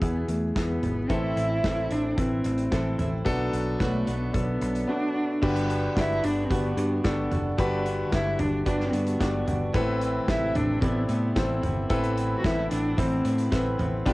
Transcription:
Already playing: B2 B3 E4 G#4
0.02 E2 B3 E4 G#4, kick, closed hi-hat
0.28 E2 A3, closed hi-hat
0.55 E2 B3 E4 G#4, kick, snare, closed hi-hat
0.83 G#1, closed hi-hat, floor tom
1.09 A1 A2 E3 A3 C4 E4 A4, kick, closed hi-hat
1.36 A1 A3 C4 E4, closed hi-hat
1.63 A1 E3 A3 C4 E4 A4, kick, snare, closed hi-hat
1.91 A1 A3 C4 D4 E4, closed hi-hat
2.17 A1 C4 E4 B4, kick, closed hi-hat
2.44 A1, closed hi-hat
2.58 closed hi-hat
2.71 A1 E3 A3 C4 E4 A4, kick, snare, closed hi-hat
2.98 A1 A3 C4 E4, closed hi-hat, floor tom
3.25 B1 B2 F#3 A3 B3 D4 F#4 A4, kick, closed hi-hat
3.52 B1 A3 D4 F#4, closed hi-hat
3.79 B1 F#3 A3 B3 D4 F#4 B4, kick, snare, closed hi-hat
4.06 B1 A3 B3 D4 F#4, closed hi-hat
4.33 B1 B3 D4 A4, kick, closed hi-hat
4.61 B1, closed hi-hat
4.75 closed hi-hat
4.87 F#3 A3 B3 D4 F#4
5.15 A3 D4 F#4
5.42 G1 G2 D3 G3 B3 D4 F#4 G4 B4, kick, crash
5.56 closed hi-hat
5.69 B3 D4 F#4, closed hi-hat
5.96 G1 D4 E4 F#4 G4 B4, kick, snare, closed hi-hat
6.22 G1 B3 D4 F#4, closed hi-hat
6.45 C4
6.50 G1 G3 B3 D4 F#4 G4 B4, kick, closed hi-hat
6.77 G2 B3 D4 F#4, closed hi-hat
7.04 G1 G3 B3 D4 F#4 G4 A4, kick, snare, closed hi-hat
7.31 F#1 B3 D4 F#4, closed hi-hat, floor tom
7.58 G1 G2 D3 G3 B3 D4 F#4 G4 B4, kick, closed hi-hat
7.85 B3 D4 F#4, closed hi-hat
8.12 G1 G3 D4 E4 F#4 B4, kick, snare, closed hi-hat
8.39 G1 D4, closed hi-hat, floor tom
8.66 G1 G3 B3 D4 F#4 G4 B4, kick, closed hi-hat
8.80 snare
8.93 G2 B3 D4 F#4, closed hi-hat
9.07 closed hi-hat
9.20 G1 G3 B3 D4 F#4 G4 D5, kick, snare, closed hi-hat
9.46 G1 B3 D4 F#4, closed hi-hat, floor tom
9.73 A1 A2 E3 B3 C4 E4 A4 B4, kick, closed hi-hat
10.00 B3 C4 E4, closed hi-hat
10.28 A1 C3 E4 A4 B4, kick, snare, closed hi-hat
10.55 A1 D4, closed hi-hat, floor tom
10.81 A1 A2 E3 B3 C4 E4 A4 D5, kick, closed hi-hat
11.08 A2 B3 C4 E4, closed hi-hat
11.35 A1 E3 B3 C4 E4 A4 C5, kick, snare, closed hi-hat
11.62 G1 B3 C4 E4, closed hi-hat, floor tom
11.89 A1 A2 E3 B3 C4 E4 A4 B4, kick, closed hi-hat
12.04 closed hi-hat
12.16 B3 C4 E4, closed hi-hat
12.38 F#4
12.43 A1 C4 E4 A4 B4, kick, snare, closed hi-hat
12.70 A1 B3 C4 D4 E4, closed hi-hat
12.97 A1 A2 E3 B3 C4 E4 A4 C5, kick, closed hi-hat
13.25 A2 B3 C4 E4, closed hi-hat
13.38 closed hi-hat
13.51 A1 E3 B3 C4 E4 A4 B4, kick, snare, closed hi-hat
13.78 A1 B3 C4 E4, closed hi-hat, floor tom
14.05 B1 B2 F3 G3 B3 D4 F4 G4 B4, kick, closed hi-hat

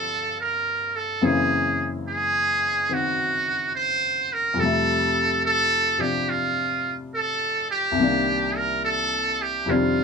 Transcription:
Already playing: G2 D3 F3 A#3 C4 F4 G4 A4 D5
0.41 A#4
0.96 A4
1.21 F#2 C#3 E3 A#3 C4 G#4
2.08 G#4
2.89 D#3 C4 F#4
2.93 F#4
3.75 C5
4.33 A#4
4.54 F2 C3
4.59 G3 A3 A4
4.65 E5
5.46 A4
5.98 C3 F3 D4 G4
6.29 F4
7.14 A4
7.71 G4
7.92 C2 C3
7.98 D#3 A#3
8.03 D4
8.57 A#4
8.85 A4
9.42 G4
9.66 F2 C3 D#3 G3 E4
9.70 C4 D4 F4

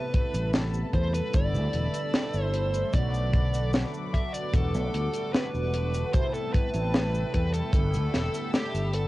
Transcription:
Already playing: C3 G3 A3 B3 E4 A4 B4 A5 B5
0.14 kick, closed hi-hat
0.34 A1, closed hi-hat, cabasa
0.53 snare, closed hi-hat, cabasa
0.74 cabasa
0.93 E2 C5, kick, closed hi-hat
1.14 B4, closed hi-hat, cabasa
1.32 G1 D3 G3 A3 B3 E4 D5 E6, kick, closed hi-hat, cabasa
1.54 D2, cabasa
1.73 E1, closed hi-hat
1.94 closed hi-hat, cabasa
2.14 snare, closed hi-hat, cabasa
2.34 G1, cabasa
2.44 C5
2.54 closed hi-hat
2.74 closed hi-hat, cabasa
2.92 B1 D3 F#3 A3 B3 F#4 D5 F#5 B5 D6, kick, closed hi-hat, cabasa
3.14 cabasa
3.34 kick, closed hi-hat
3.54 closed hi-hat, cabasa
3.73 snare, closed hi-hat, cabasa
3.94 cabasa
4.14 E5, kick, closed hi-hat
4.34 D5, closed hi-hat, cabasa
4.53 E1 D3 G3 A3 B3 F#4 A4 A5, kick, closed hi-hat, cabasa
4.74 B1, cabasa
4.94 D2, closed hi-hat
5.14 closed hi-hat, cabasa
5.33 B4, snare, closed hi-hat, cabasa
5.54 E1, cabasa
5.74 closed hi-hat
5.94 closed hi-hat, cabasa
6.12 C3 G3 A3 B3 E4 A4 C5 G5 A5 B5, kick, closed hi-hat, cabasa
6.34 A4, cabasa
6.53 B4, kick, closed hi-hat
6.74 A1, closed hi-hat, cabasa
6.94 snare, closed hi-hat, cabasa
7.14 cabasa
7.34 E2 B4, kick, closed hi-hat
7.54 A4, closed hi-hat, cabasa
7.72 G1 D3 G3 A3 B3 E4 E6, kick, closed hi-hat, cabasa
7.94 D2, closed hi-hat, cabasa
8.14 E1, snare, closed hi-hat
8.34 closed hi-hat, cabasa
8.54 G4, snare, closed hi-hat, cabasa
8.74 G1, closed hi-hat, cabasa
8.93 A4, closed hi-hat

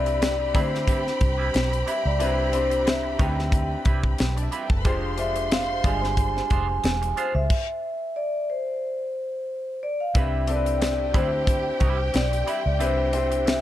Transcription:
Already playing: C2 C4 D4 E4 G4 B4 D5 B5
0.06 muted clean electric guitar stroke, closed hi-hat
0.21 muted clean electric guitar stroke, snare, closed hi-hat
0.39 muted clean electric guitar stroke
0.54 D2 G3 C4 D4 E4 G4 B4 C5, kick, closed hi-hat
0.72 muted clean electric guitar stroke, snare
0.87 G3 C4 E4 B4, kick, closed hi-hat
1.07 snare
1.20 C2, muted clean electric guitar stroke, kick, closed hi-hat
1.38 G3 C4 E4 B4
1.53 B1, muted clean electric guitar stroke, snare, closed hi-hat
1.71 muted clean electric guitar stroke, closed hi-hat
1.86 G3 C4 E4 B4 E5, closed hi-hat
2.04 C#2 D5, muted clean electric guitar stroke
2.19 C2 G3 C4 D4 E4 G4 B4 C5, closed hi-hat
2.52 C4 D4 E4 G4 C5, closed hi-hat
2.70 muted clean electric guitar stroke, closed hi-hat
2.86 E5, muted clean electric guitar stroke, snare, closed hi-hat
3.03 muted clean electric guitar stroke
3.18 D2 G3 C4 D4 D#4 E4 G4 B4 G5, kick, closed hi-hat
3.26 E4
3.37 muted clean electric guitar stroke, snare
3.52 muted clean electric guitar stroke, kick, closed hi-hat
3.71 muted clean electric guitar stroke
3.85 C2 G3 C4 E4 B4, kick, closed hi-hat
4.04 kick
4.18 B1, muted clean electric guitar stroke, snare, closed hi-hat
4.37 D4 D5, muted clean electric guitar stroke, closed hi-hat
4.45 E4 E5
4.52 G3 C4 E4 F4 B4 F5, closed hi-hat
4.61 G4 G5
4.70 F#1 A4 A5, muted clean electric guitar stroke, kick
4.77 B4 B5
4.84 F1 G#3 D4 F4 G4 C5 C6, kick, closed hi-hat
5.17 G#3 D4 F4 G4 C5 E5, closed hi-hat
5.36 muted clean electric guitar stroke, closed hi-hat
5.51 F5, muted clean electric guitar stroke, snare, closed hi-hat
5.69 muted clean electric guitar stroke
5.84 G1 G3 G#3 D4 F4 C5 G#5, kick, closed hi-hat
6.04 snare
6.17 muted clean electric guitar stroke, kick, closed hi-hat
6.36 muted clean electric guitar stroke, snare
6.50 F1 G#3 D4 F4 C5, kick, closed hi-hat
6.69 muted clean electric guitar stroke
6.84 E1, muted clean electric guitar stroke, snare, closed hi-hat
7.02 muted clean electric guitar stroke, closed hi-hat
7.17 G#3 D4 F4 C5, closed hi-hat
7.35 C#2 E5, muted clean electric guitar stroke
7.50 kick, crash
8.16 D5
8.50 C5
9.83 D5
10.00 F5
10.14 C2 G3 C4 D4 E4 G4 B4 G5, kick, closed hi-hat
10.47 C4 D4 E4 G4 A4 D5, closed hi-hat
10.56 B4
10.66 muted clean electric guitar stroke, closed hi-hat
10.81 muted clean electric guitar stroke, snare, closed hi-hat
10.99 muted clean electric guitar stroke
11.13 D2 G3 C4 D4 E4 G4 B4 C5, kick, closed hi-hat
11.47 kick, closed hi-hat
11.65 muted clean electric guitar stroke
11.80 C2 G3 C4 E4 B4, kick, closed hi-hat
11.98 muted clean electric guitar stroke
12.14 B1 D5, muted clean electric guitar stroke, snare, closed hi-hat
12.31 muted clean electric guitar stroke, closed hi-hat
12.47 G3 C4 E4 B4 E5, closed hi-hat
12.66 C#2 D5
12.79 C2 G3 C4 D4 E4 G4 B4 C5, closed hi-hat
13.12 C4 D4 E4 G4 C5, closed hi-hat
13.31 muted clean electric guitar stroke, closed hi-hat
13.46 E5, muted clean electric guitar stroke, snare, closed hi-hat

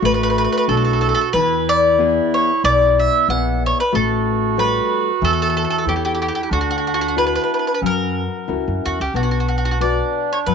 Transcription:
Already playing: F#4
0.02 A1 A3 B4
0.14 B4
0.23 B4
0.30 B4
0.38 B4
0.44 B4
0.52 B4
0.58 B4
0.68 B1 D4 E4 A4
0.77 A4
0.85 A4
0.93 A4
1.01 A4
1.09 A4
1.15 A4
1.21 A4
1.33 E2 E3 E4 B4
1.69 D5
1.98 B3 E4 G#4
2.34 C#5
2.64 B1 B2 D5
2.99 E5
3.28 A#1 B3 E4 G#4 F#5
3.66 C#5
3.80 B4
3.92 A1 A3 F#4 A4
4.57 G3 A4 B4 C#5
5.21 E2 E3 A4
5.33 A4
5.42 A4
5.50 A4
5.57 A4
5.64 A4
5.70 A4
5.78 A4
5.85 E2 E4 G4 A4 C#5
5.96 G4
6.05 G4
6.15 G4
6.22 G4
6.28 G4
6.35 G4
6.43 G4
6.50 D2 D3 D4 F#4
6.61 F#4
6.71 F#4
6.78 F#4
6.87 F#4
6.94 F#4
7.01 F#4
7.08 F#4
7.16 D4 E4 F#4 B4
7.27 B4
7.35 B4
7.43 B4
7.54 B4
7.59 B4
7.67 B4
7.74 B4
7.81 F#2 F#3 C#4
7.86 A#4
8.47 C#2 C#4 E4 F#4 A#4
8.68 F#2
8.86 E2 F#4
9.00 C#2 G4
9.14 B1 B3 D4 F#4
9.23 F#4
9.31 F#4
9.40 F#4
9.48 F#4
9.58 F#4
9.65 F#4
9.71 F#4
9.80 F#4 B4 D5
10.33 C#5
10.46 F#2 F#3 B4

